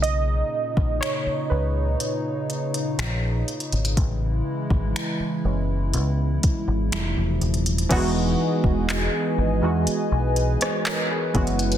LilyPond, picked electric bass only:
\new Staff \with { instrumentName = "Picked electric bass" } { \clef bass \time 4/4 \key e \lydian \tempo 4 = 61 b,,8 r16 ais,,16 r8 cis,8 r4 ais,,8 r16 gis,,16 | a,,8 r16 gis,,16 r8 fis,,8 cis,8 r16 gis,,16 f,,16 e,,16 dis,,8 | e,,8 r16 e,,8 r16 gis,,16 e,16 r16 b,,8 r8. fis,,8 | }